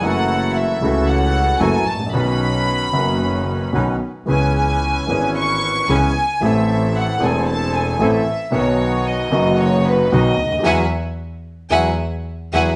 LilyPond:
<<
  \new Staff \with { instrumentName = "Violin section" } { \time 4/4 \key b \mixolydian \tempo 4 = 113 fis''4 e''4 fis''4 gis''8 a''8 | b''2. r4 | gis''8 gis''4. cis'''4 gis''4 | e''4 fis''8 gis''8 a''8 gis''8 e''4 |
cis''4 dis''4 cis''8 b'8 dis''4 | <e'' fis'' gis''>8 r4. <e'' fis'' gis''>8 r4 <e'' fis'' gis''>8 | }
  \new Staff \with { instrumentName = "Bandoneon" } { \time 4/4 \key b \mixolydian <e' fis' a'>4. <e' fis' a'>4. <e' fis' a'>8 r8 | <cis' dis' b'>4. <cis' dis' b'>4. <cis' dis' b'>8 r8 | <cis' e' b'>4. <cis' e' b'>4. <cis' e' b'>8 r8 | <c' e' a'>4. <c' e' a'>4. <c' e' a'>8 r8 |
<b dis' fis'>4. <b dis' fis'>4. <b dis' fis'>8 r8 | <e' fis' gis'>8 r4. <e' fis' gis'>8 r4 <e' fis' gis'>8 | }
  \new Staff \with { instrumentName = "Upright piano" } { \clef bass \time 4/4 \key b \mixolydian <fis, e fis a cis' fis'>4. <cis, cis e a cis' fis'>4. <fis, e fis a cis' fis'>8 r32 gis,,32 a,,32 ais,,32 | <b,, b, dis b cis' fis'>4. <fis,, fis, dis b cis' fis'>4. <b,, b, dis b cis' fis'>8 r8 | <cis, cis e b cis' gis'>4. <gis,, gis, e b cis' gis'>4. <cis, cis e b cis' gis'>8 r8 | <a,, a, e a c' a'>4. <e,, e, e a c' a'>4. <a,, a, e a c' a'>8 r8 |
<b,, b, dis fis b fis'>4. <fis,, fis, dis fis b fis'>4. <b,, b, dis fis b fis'>8 r32 cis,32 d,32 dis,32 | <e fis gis>8 r4. <e fis gis>8 r4 <e fis gis>8 | }
  \new Staff \with { instrumentName = "Double bass" } { \clef bass \time 4/4 \key b \mixolydian fis,,4. cis,4. fis,,8 a,,8 | b,,4. fis,,4. b,,8 r8 | cis,4. gis,,4. cis,8 r8 | a,,4. e,,4. a,,8 r8 |
b,,4. fis,,4. b,,8 d,8 | e,8 r4. e,8 r4 e,8 | }
>>